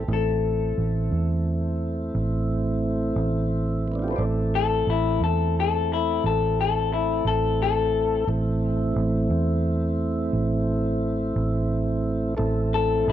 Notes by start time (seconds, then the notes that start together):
0.08 A1 A3 C4 E4
0.13 A4
0.78 A1
1.11 E2
2.15 A1
3.16 A1
3.88 A3 B3
3.93 C4 D4
3.99 E4 F4
4.04 G4
4.08 A4 B4
4.12 C5 D5
4.18 A1 A3 C4 E4 A4
4.55 A4
4.87 A1 E4
5.20 E2 A4
5.60 A4
5.93 E4
6.24 A1 A4
6.61 A4
6.93 E4
7.25 A1 A4
7.62 A4
8.27 A1 A3 C4 E4
8.96 A1
9.30 E2
10.33 A1
11.36 A1
12.37 A1 A3 C4 E4 A4
12.74 A4
13.08 A1